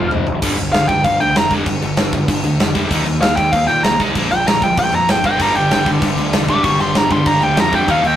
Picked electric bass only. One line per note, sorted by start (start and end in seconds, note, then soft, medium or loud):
0.11 0.22 F1 loud
0.27 0.38 F1 medium
0.42 0.55 G1 medium
0.59 0.71 G1 medium
0.74 0.87 G1 medium
0.89 1.02 G1 medium
1.04 1.17 G1 medium
1.20 1.33 D2 medium
1.36 1.62 F1 medium
1.66 1.79 G1 loud
1.83 1.95 G1 medium
1.98 2.11 G1 medium
2.13 2.26 G1 medium
2.28 2.41 G1 medium
2.44 2.57 D2 medium
2.59 2.86 F1 medium
2.91 3.04 D#2 medium
3.05 3.19 D#2 medium
3.22 3.35 D#2 medium
3.37 3.50 D#2 medium
3.53 3.66 D#2 medium
3.69 3.82 A#2 medium
3.84 4.10 C2 medium
4.15 4.28 A#1 loud
4.31 4.44 A#1 medium
4.46 4.59 A#1 medium
4.62 4.75 A#1 medium
4.77 4.91 A#1 medium
4.93 5.06 F2 medium
5.08 5.35 G1 medium
5.40 5.53 G1 loud
5.54 5.68 G1 medium
5.70 5.84 G1 medium
5.86 5.99 G1 medium
6.02 6.15 G1 medium
6.16 6.30 D2 medium
6.33 6.59 F1 loud
6.64 6.77 G1 loud
6.80 6.93 G1 medium
6.95 7.08 G1 medium
7.11 7.24 G1 medium
7.26 7.39 G1 loud
7.42 7.55 D2 medium
7.57 7.83 F2 loud
7.88 8.01 D#2 loud
8.03 8.16 D#2 medium